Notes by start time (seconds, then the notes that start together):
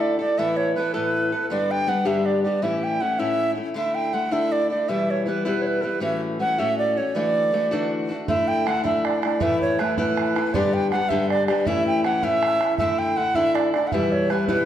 Already playing: D3 A3 E4 A4
0.01 D5
0.19 A3 E4 A4 D5
0.38 A2 E3 B3 E4 A4 E5
0.57 C#5
0.75 E3 B3 E4 A4 B4
0.94 A2 E3 B3 E4 A4 B4
1.32 B3 E4 A4
1.50 G2 D3 G3 B3 D4 G4 D5
1.71 G5
1.87 G3 B3 D4 G4 F#5
2.05 G2 D3 G3 B3 D4 G4 E5
2.26 D5
2.43 G3 B3 D4 G4 D5
2.62 A2 E3 A3 C#4 E4 E5
2.84 G5
3.00 E3 A3 C#4 E4 F#5
3.19 A2 E3 A3 C#4 E4 E5
3.55 A3 C#4 E4
3.74 D3 A3 D4 E4 E5
3.95 G5
4.13 D3 A3 D4 E4 F#5
4.31 D3 A3 D4 E4 E5
4.52 D5
4.70 A3 D4 E4 D5
4.88 E2 B2 E3 G3 B3 E4 E5
5.10 C#5
5.26 E3 G3 B3 E4 B4
5.45 E2 B2 E3 G3 B3 E4 B4
5.62 C#5
5.67 B4
5.81 E3 G3 B3 E4 A4 B4
6.00 A2 E3 A3 C#4 F#4 E5
6.39 E3 A3 C#4 F#4 F#5
6.58 A2 E3 A3 C#4 F#4 E5
6.78 D5
6.96 A3 C#4 F#4 C#5
7.14 D3 E3 A3 D4 F#4 D5
7.52 E3 A3 D4 F#4
7.71 D3 E3 A3 D4 F#4
8.09 A3 D4 F#4
8.28 D3 A3 D4 E4 E5, bodhran
8.48 G5, bodhran
8.66 D3 A3 D4 E4 F#5, bodhran
8.83 D3 A3 D4 E4 E5, bodhran
9.05 D5, bodhran
9.22 A3 D4 E4 D5, bodhran
9.40 A2 E3 A3 B3 E4 E5, bodhran
9.61 C#5, bodhran
9.79 E3 A3 B3 E4 B4, bodhran
9.98 A2 E3 A3 B3 E4 B4, bodhran
10.17 bodhran
10.35 A3 B3 E4, bodhran
10.54 G2 D3 G3 B3 D4 G4 D5, bodhran
10.74 G5, bodhran
10.91 G3 B3 D4 F#5, bodhran
10.95 G4
11.09 G2 D3 G3 B3 D4 G4 E5, bodhran
11.30 D5, bodhran
11.48 G3 B3 D4 G4 D5, bodhran
11.65 A2 E3 A3 C#4 E4 E5, bodhran
11.86 G5, bodhran
12.04 E3 A3 C#4 E4 F#5, bodhran
12.23 A2 E3 A3 C#4 E4 E5, bodhran
12.43 bodhran
12.60 A3 C#4 E4, bodhran
12.78 D3 A3 D4 E4 E5, bodhran
12.99 G5, bodhran
13.16 D3 A3 D4 E4 F#5
13.35 D3 A3 D4 E4 E5, bodhran
13.55 D5, bodhran
13.73 A3 D4 E4 D5, bodhran
13.87 F#5
13.92 E2 B2 E3 G3 B3 E4 E5, bodhran
14.12 C#5, bodhran
14.30 E3 G3 B3 E4 B4, bodhran
14.48 E2 B2 E3 G3 B3 E4 B4, bodhran